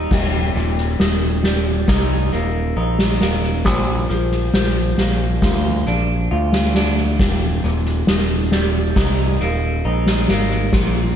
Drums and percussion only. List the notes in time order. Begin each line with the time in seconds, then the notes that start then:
0.11 kick, snare, crash
0.56 snare
0.78 snare
1.00 snare
1.44 snare
1.88 kick, snare
2.32 snare
2.99 snare
3.21 snare
3.43 snare
3.65 kick, snare
4.09 snare
4.31 snare
4.53 snare
4.98 snare
5.42 kick, snare
5.86 snare
6.53 snare
6.75 snare
6.97 snare
7.19 kick, snare
7.64 snare
7.85 snare
8.07 snare
8.52 snare
8.96 kick, snare
9.40 snare
10.06 snare
10.28 snare
10.51 snare
10.73 kick, snare